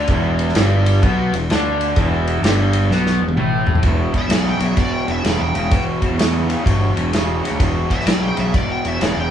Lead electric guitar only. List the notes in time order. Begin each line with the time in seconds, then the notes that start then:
4.18 E5
4.34 D5
4.49 G5
4.64 E5
4.78 D5
4.93 G5
5.11 E5
5.26 D5
5.40 G5
5.56 G5
7.91 E5
8.07 D5
8.23 G5
8.40 E5
8.55 D5
8.71 G5
8.87 E5
9.02 D5
9.20 G5